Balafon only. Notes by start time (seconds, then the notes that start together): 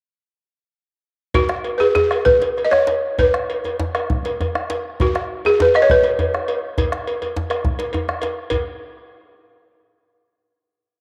1.35 F#4
1.78 G#4 B4
1.95 G#4
2.25 B4
2.65 D#5
2.71 C#5
3.19 B4
5.02 F#4
5.46 G#4
5.62 B4
5.76 D#5
5.82 C#5
5.91 B4